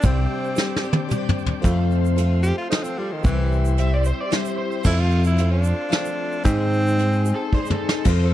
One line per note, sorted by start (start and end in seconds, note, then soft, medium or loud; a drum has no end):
0.00 0.25 C2 loud
0.00 0.56 C3 medium
0.00 0.54 G3 medium
0.00 0.55 C4 medium
0.00 0.56 D4 loud
0.00 0.48 G4 medium
0.00 0.57 G4 medium
0.00 1.61 G5 medium
0.00 kick loud
0.00 closed hi-hat medium
0.00 shaker loud
0.05 1.11 C4 medium
0.05 0.49 C5 medium
0.05 1.63 C5 medium
0.05 0.49 D5 medium
0.05 1.63 D5 medium
0.05 1.63 D6 medium
0.45 shaker soft
0.55 0.83 G3 medium
0.55 0.83 C4 medium
0.55 0.83 D4 medium
0.55 1.01 G4 medium
0.55 0.82 G4 medium
0.55 1.01 C5 medium
0.55 1.02 D5 medium
0.55 snare medium
0.55 shaker loud
0.76 snare medium
0.83 1.09 C4 medium
0.83 1.10 D4 soft
0.83 1.10 G4 medium
0.83 shaker soft
0.93 high tom medium
1.08 1.62 G3 medium
1.08 1.63 C4 medium
1.08 1.64 D4 medium
1.08 1.54 G4 medium
1.08 1.54 C5 medium
1.08 1.54 D5 medium
1.08 mid tom medium
1.08 shaker medium
1.13 1.64 G4 medium
1.29 mid tom medium
1.39 shaker soft
1.46 floor tom medium
1.61 2.16 F2 medium
1.61 2.51 F2 loud
1.61 2.17 C3 medium
1.61 2.15 F3 medium
1.61 2.17 A3 medium
1.61 2.18 C4 loud
1.61 2.07 F4 medium
1.61 2.18 F4 medium
1.61 2.07 A4 medium
1.61 3.23 A4 medium
1.61 2.08 C5 loud
1.61 4.82 C5 medium
1.61 3.23 F5 medium
1.61 8.34 C6 medium
1.61 kick loud
1.61 closed hi-hat medium
1.61 shaker medium
1.91 shaker soft
2.05 shaker medium
2.16 2.70 F3 medium
2.16 2.71 A3 medium
2.16 2.74 C4 medium
2.16 2.61 F4 medium
2.16 2.72 F4 medium
2.16 2.62 A4 medium
2.16 2.62 C5 medium
2.16 closed hi-hat medium
2.16 shaker soft
2.43 2.56 G4 loud
2.43 shaker loud
2.58 2.70 F4 medium
2.70 2.98 F3 medium
2.70 2.98 A3 medium
2.70 2.84 D#4 medium
2.70 3.15 F4 medium
2.70 3.15 A4 medium
2.70 3.15 C5 medium
2.70 snare medium
2.70 closed hi-hat medium
2.74 2.97 C4 medium
2.74 2.97 F4 medium
2.83 3.00 C4 medium
2.83 shaker medium
2.98 3.24 F3 soft
2.98 3.14 G3 medium
2.98 3.25 A3 soft
2.98 3.24 C4 soft
2.98 3.24 F4 medium
3.12 3.24 D#3 medium
3.23 4.11 C2 loud
3.23 3.78 C3 medium
3.23 3.77 E3 medium
3.23 3.76 G3 medium
3.23 3.78 C4 medium
3.23 3.69 E4 medium
3.23 3.78 E4 medium
3.23 3.69 G4 medium
3.23 4.83 G4 medium
3.23 3.78 G4 loud
3.23 3.69 C5 medium
3.23 4.84 E5 medium
3.23 kick loud
3.23 closed hi-hat medium
3.23 shaker medium
3.52 shaker soft
3.65 shaker medium
3.77 4.29 G3 medium
3.77 4.31 C4 medium
3.77 4.23 E4 medium
3.77 4.30 E4 medium
3.77 4.23 G4 medium
3.77 4.32 G4 medium
3.77 4.23 C5 medium
3.77 3.92 E5 medium
3.77 closed hi-hat medium
3.77 shaker soft
3.94 4.05 D5 medium
4.05 4.18 C5 medium
4.05 shaker loud
4.21 4.32 D5 medium
4.30 4.84 G3 medium
4.30 4.84 C4 medium
4.30 4.84 E4 medium
4.30 4.76 E4 medium
4.30 4.76 G4 medium
4.30 4.85 G4 medium
4.30 4.76 C5 medium
4.30 4.57 C5 medium
4.30 snare medium
4.30 closed hi-hat medium
4.45 shaker medium
4.58 4.84 C5 loud
4.72 shaker soft
4.83 5.37 F2 medium
4.83 5.72 F2 loud
4.83 5.38 C3 medium
4.83 5.35 F3 medium
4.83 5.36 A3 medium
4.83 5.38 C4 medium
4.83 5.02 E4 loud
4.83 5.38 F4 medium
4.83 5.30 F4 medium
4.83 6.43 A4 medium
4.83 5.30 A4 medium
4.83 8.34 C5 medium
4.83 5.30 C5 medium
4.83 6.43 F5 medium
4.83 kick loud
4.83 crash loud
4.83 shaker loud
5.00 5.25 F4 medium
5.11 shaker soft
5.24 5.51 E4 medium
5.24 shaker medium
5.36 5.64 F3 medium
5.36 5.64 A3 medium
5.36 5.63 C4 medium
5.36 5.61 F4 medium
5.36 5.84 F4 medium
5.36 5.84 A4 medium
5.36 closed hi-hat medium
5.36 shaker soft
5.41 5.84 C5 medium
5.51 6.42 D4 medium
5.62 5.88 F3 soft
5.62 5.89 A3 soft
5.62 5.90 C4 soft
5.62 5.90 F4 medium
5.62 shaker loud
5.89 6.43 F3 medium
5.89 6.44 A3 medium
5.89 6.45 C4 medium
5.89 6.37 F4 medium
5.89 6.45 F4 medium
5.89 6.37 A4 medium
5.89 6.37 C5 medium
5.89 snare medium
5.89 closed hi-hat medium
6.05 shaker medium
6.32 shaker soft
6.44 6.97 G#2 medium
6.44 7.32 G#2 loud
6.44 6.98 D#3 medium
6.44 6.96 G#3 medium
6.44 7.48 C4 loud
6.44 6.97 C4 medium
6.44 8.03 D#4 medium
6.44 6.98 D#4 medium
6.44 6.91 D#4 medium
6.44 8.03 G#4 medium
6.44 6.99 G#4 loud
6.44 6.91 G#4 medium
6.44 6.91 C5 medium
6.44 kick loud
6.44 closed hi-hat medium
6.44 shaker loud
6.73 shaker soft
6.87 shaker medium
6.97 7.24 G#3 medium
6.97 7.25 C4 medium
6.97 7.25 D#4 medium
6.97 7.44 D#4 medium
6.97 7.44 G#4 medium
6.97 7.23 G#4 medium
6.97 7.44 C5 medium
6.97 closed hi-hat medium
7.13 shaker soft
7.25 7.52 G#3 soft
7.25 7.52 C4 soft
7.25 7.52 D#4 soft
7.25 7.51 G#4 medium
7.25 shaker loud
7.36 7.52 A4 medium
7.52 8.06 G#3 medium
7.52 8.05 C4 medium
7.52 7.97 D#4 medium
7.52 8.06 D#4 medium
7.52 7.97 G#4 medium
7.52 7.70 C5 medium
7.52 7.97 D5 medium
7.52 kick medium
7.56 8.07 G#4 medium
7.66 shaker medium
7.70 7.88 A4 medium
7.70 mid tom medium
7.89 8.06 A4 medium
7.89 snare medium
8.05 8.34 F2 loud
8.05 8.34 C3 medium
8.05 8.34 F3 medium
8.05 8.34 C4 loud
8.05 8.34 F4 loud
8.05 8.34 A4 medium
8.05 8.34 A4 loud
8.05 8.34 C5 loud
8.05 8.23 C5 medium
8.05 8.34 F5 medium
8.05 kick loud
8.05 closed hi-hat medium
8.05 crash medium
8.05 shaker loud
8.25 8.34 A4 medium